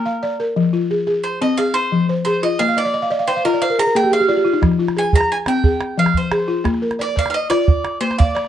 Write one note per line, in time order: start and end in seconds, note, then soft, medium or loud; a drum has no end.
0.00 0.22 A#3 medium
0.00 0.36 A#4 medium
0.06 0.56 F5 medium
0.23 0.56 D5 medium
0.40 0.73 A#4 medium
0.56 0.90 F3 medium
0.73 1.24 F4 medium
0.91 1.06 G#4 medium
1.07 1.57 G#4 medium
1.24 1.40 C5 medium
1.41 1.75 C4 medium
1.41 1.59 D#5 medium
1.57 2.09 G#4 medium
1.57 1.75 F5 medium
1.74 2.06 C5 medium
1.92 2.26 F3 medium
2.09 2.60 C5 medium
2.25 2.60 G#4 medium
2.25 2.43 C5 medium
2.43 2.77 F4 medium
2.43 2.60 D#5 medium
2.59 2.93 A#3 medium
2.59 2.75 D#5 medium
2.59 2.77 F5 medium
2.68 2.84 F5 medium
2.77 3.09 D5 medium
2.77 2.92 D#5 medium
2.85 3.01 D5 medium
2.94 3.09 D#5 medium
3.02 3.18 F5 medium
3.10 3.44 D5 medium
3.10 3.26 D#5 medium
3.19 3.35 F5 medium
3.27 3.45 C5 medium
3.27 3.43 G5 medium
3.36 3.52 F5 medium
3.45 3.78 F4 medium
3.45 3.60 A#4 medium
3.45 3.60 D#5 medium
3.53 3.69 D5 medium
3.62 3.77 C5 medium
3.62 3.79 F5 loud
3.70 3.85 A#4 medium
3.79 3.94 G#4 medium
3.79 3.96 A#5 loud
3.86 4.02 A#4 medium
3.95 4.29 A#3 medium
3.95 4.10 G#4 medium
3.95 4.11 G5 loud
4.03 4.19 G4 medium
4.11 4.27 G#4 medium
4.11 4.60 F5 medium
4.20 4.35 G4 medium
4.28 4.43 F4 medium
4.28 4.63 D5 medium
4.36 4.53 G4 medium
4.45 4.61 F4 medium
4.53 4.69 D#4 medium
4.62 4.96 F3 medium
4.62 calabash thump medium
4.62 calabash click medium
4.71 calabash click soft
4.79 5.30 F4 medium
4.88 calabash click soft
4.97 5.13 G#4 medium
4.97 5.13 G#5 medium
4.97 calabash click soft
5.04 calabash click soft
5.13 5.47 G#4 medium
5.13 5.31 A#5 loud
5.13 calabash thump medium
5.21 calabash click medium
5.32 5.37 G#5 medium
5.46 5.81 C4 medium
5.46 5.99 G5 medium
5.46 calabash click medium
5.64 6.15 G#4 medium
5.64 calabash thump medium
5.81 calabash click medium
5.98 6.32 F3 medium
5.98 6.16 F5 medium
6.06 calabash click medium
6.14 6.64 C5 medium
6.14 calabash thump medium
6.31 6.66 G#4 medium
6.31 calabash click medium
6.40 calabash click soft
6.48 6.82 F4 medium
6.64 6.99 A#3 medium
6.64 calabash thump medium
6.64 calabash click medium
6.74 calabash click soft
6.82 7.33 A#4 medium
6.91 calabash click medium
6.99 7.15 D5 medium
6.99 7.18 D5 medium
6.99 calabash click soft
7.09 calabash click soft
7.16 7.50 D5 medium
7.16 7.29 F5 loud
7.16 calabash thump medium
7.26 calabash click medium
7.30 7.34 F5 medium
7.34 7.49 D#5 medium
7.50 7.84 F4 medium
7.50 8.00 D5 loud
7.50 calabash click medium
7.68 calabash thump medium
7.85 calabash click medium
8.01 8.35 A#3 medium
8.01 8.18 C5 medium
8.11 calabash click medium
8.18 8.48 D5 medium
8.18 8.48 F5 medium
8.18 calabash thump medium
8.35 8.48 D5 medium
8.35 calabash click medium
8.45 calabash click soft